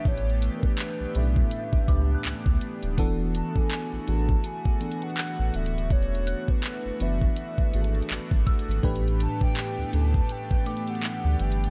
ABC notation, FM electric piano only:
X:1
M:4/4
L:1/8
Q:"Swing 16ths" 1/4=82
K:Elyd
V:1 name="FM electric piano"
z3 [=A,,=A,C=D=GB]2 [A,,A,DGB]2 z | [E,B,=DF=A]2 z [E,B,DFGA]2 [E,B,DFA]3 | z3 [E,B,=DFB]2 [E,B,DFG=A]2 z | [=A,,=A,=D=GB]2 z [A,,A,CDG=A]2 [A,,A,DGB]3 |]